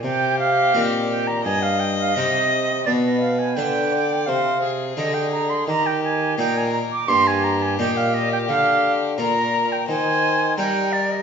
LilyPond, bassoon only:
\new Staff \with { instrumentName = "Bassoon" } { \clef bass \time 4/4 \key c \minor \tempo 4 = 85 c4 bes,4 g,4 c4 | b,4 d4 c4 d4 | ees4 bes,8 r8 g,4 bes,4 | d4 bes,4 ees4 g4 | }